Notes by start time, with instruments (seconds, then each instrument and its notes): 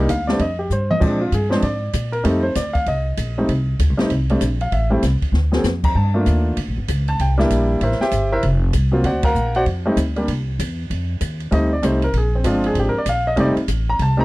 0.09 upright bass D2, grand piano F5, kick, hi-hat pedal, ride
0.27 grand piano G3 A3 C4 D4 D5, snare
0.39 upright bass F2, grand piano D#5, kick, ride
0.59 grand piano G4
0.70 upright bass G2, grand piano C5, hi-hat pedal
0.91 grand piano D#5, mid tom
1.00 upright bass A#2, grand piano F3 G#3 C4 D4 D5, kick, crash
1.21 grand piano F4
1.32 upright bass G2, grand piano G#4, kick, hi-hat pedal, ride
1.50 grand piano F3 G#3 C4 D4 C5, snare
1.62 upright bass G#2, grand piano D5, kick, ride
1.93 upright bass A#2, kick, hi-hat pedal, ride
2.12 grand piano A#4, ride
2.24 upright bass F2, grand piano G3 A3 C4 D#4 A4, kick, ride
2.43 grand piano C5
2.55 upright bass D2, grand piano D5, kick, snare, hi-hat pedal, ride
2.73 grand piano F5, kick, ride
2.86 upright bass C2, grand piano D#5, kick, ride
3.17 upright bass A#1, kick, hi-hat pedal, ride
3.38 grand piano G3 A3 C4 D#4
3.49 upright bass C2, kick, ride
3.79 upright bass D2, kick, hi-hat pedal, ride
3.90 upright bass C2
3.97 upright bass A1, grand piano G3 A3 C4 D#4, snare, ride
4.10 upright bass C2, kick, ride
4.29 grand piano G3 A3 C4 D4, ride
4.41 upright bass A#1, kick, hi-hat pedal, ride
4.61 grand piano F5, ride
4.72 upright bass A1, grand piano E5, kick, ride
4.90 grand piano G3 A3 C4 E4
5.03 upright bass C2, kick, snare, hi-hat pedal, ride
5.22 muted upright bass stroke, kick, ride
5.32 upright bass D2, snare
5.52 grand piano F#3 A#3 C4 G#4, snare
5.64 upright bass F2, snare, hi-hat pedal
5.84 grand piano A#5, kick, crash
5.95 upright bass G2, grand piano A5, kick
6.14 grand piano A3 A#3 D4 F4
6.26 upright bass D#2, kick, hi-hat pedal, ride
6.57 upright bass D2, kick, ride
6.68 upright bass A#1
6.78 upright bass G1
6.88 upright bass C#2, kick, hi-hat pedal, ride
7.08 grand piano A5, ride
7.19 upright bass C2, grand piano G5, kick, ride
7.38 grand piano G3 A#3 D4 E4, snare
7.50 upright bass A#1, kick, hi-hat pedal, ride
7.81 upright bass A1, grand piano E4 A#4 C5 E5, kick, ride
7.92 snare
8.00 grand piano G4 C5 E5 G5, muted upright bass stroke, snare
8.11 upright bass G1, kick, hi-hat pedal, ride
8.32 grand piano E4 A#4 C5 E5
8.43 upright bass F1, kick, ride
8.73 upright bass C2, kick, hi-hat pedal, ride
8.92 grand piano F#3 A#3 C4 F4
9.04 upright bass D2, grand piano F#4 C5 D5 F#5, kick, ride
9.23 grand piano A#4 F5 F#5 A#5, kick, ride
9.35 upright bass A#1, hi-hat pedal
9.55 grand piano F#4 C5 D5 F#5, ride
9.66 upright bass F2, kick, ride
9.86 grand piano G3 A3 C4 D#4
9.97 upright bass D2, kick, hi-hat pedal, ride
10.16 grand piano G3 A#3 D4 G4, ride
10.28 upright bass C2, kick, ride
10.59 upright bass E2, kick, hi-hat pedal, ride
10.90 upright bass F2, kick, ride
11.21 upright bass D#2, kick, hi-hat pedal, ride
11.40 ride
11.51 upright bass D2, grand piano G3 A3 C4 D#4 D#5, kick, ride
11.73 grand piano D5
11.83 upright bass C2, grand piano G3 A3 C4 D#4 C5, kick, hi-hat pedal, ride
12.02 grand piano A#4, ride
12.13 upright bass A#1, kick, ride
12.18 grand piano G#4
12.35 grand piano C4
12.44 upright bass G1, grand piano F3 G#3 C4 D4 F4, kick, hi-hat pedal, ride
12.64 grand piano G#4, ride
12.75 upright bass G#1, kick, ride
12.79 grand piano G4
12.89 grand piano A#4
12.94 muted upright bass stroke
12.98 grand piano D5
13.06 upright bass A#1, grand piano F5, kick, hi-hat pedal, ride
13.27 grand piano D#5
13.36 upright bass F1, grand piano G3 A3 C4 D#4 D5, kick, ride
13.56 muted upright bass stroke, ride
13.68 upright bass A1, kick, hi-hat pedal, ride
13.90 grand piano A#5
13.99 upright bass C2, grand piano A5, kick, ride
14.17 grand piano G3 A3 C4 D#4 A#5